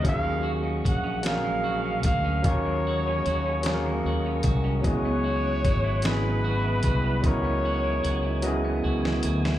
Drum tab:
HH |x---x-x---x-|x---x-x---x-|x---x-x---x-|x---x-x---x-|
SD |------o-----|------o-----|------o-----|---------o-o|
BD |o---o-----o-|o---------o-|o---o-----o-|o-----------|